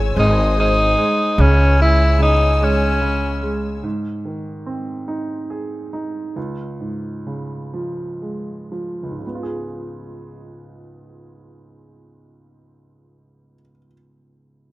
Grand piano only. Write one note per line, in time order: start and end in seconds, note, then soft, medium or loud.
0.00 0.13 G#3 medium
0.00 0.14 E4 medium
0.00 0.16 G#4 medium
0.16 0.55 G#3 medium
0.56 0.96 G#3 medium
0.97 1.37 G#3 medium
1.38 2.17 C#3 medium
1.77 2.59 G#3 medium
2.19 2.99 C#3 medium
2.60 3.41 G#3 medium
3.01 3.81 C#3 medium
3.42 3.83 G#3 medium
3.83 6.32 G#2 medium
4.25 5.89 D#3 soft
4.66 6.32 C4 soft
5.08 5.92 D#4 medium
5.50 6.34 G#4 soft
5.93 6.35 D#4 soft
6.36 9.02 C#2 medium
6.80 8.68 G#2 soft
7.27 9.17 C#3 soft
7.73 8.70 F3 soft
8.22 9.21 G#3 soft
8.72 9.22 F3 soft
9.03 13.53 C#2 soft
9.11 13.61 G#2 soft
9.19 13.69 C#3 soft
9.27 13.77 B3 soft
9.35 13.85 F4 soft
9.43 13.93 G#4 soft